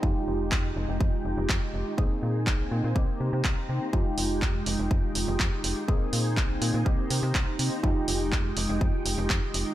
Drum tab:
HH |--------|--------|-o-o-o-o|-o-o-o-o|
CP |--x---x-|--x---x-|--x---x-|--x---x-|
BD |o-o-o-o-|o-o-o-o-|o-o-o-o-|o-o-o-o-|

HH |-o-o-o-o|
CP |--x---x-|
BD |o-o-o-o-|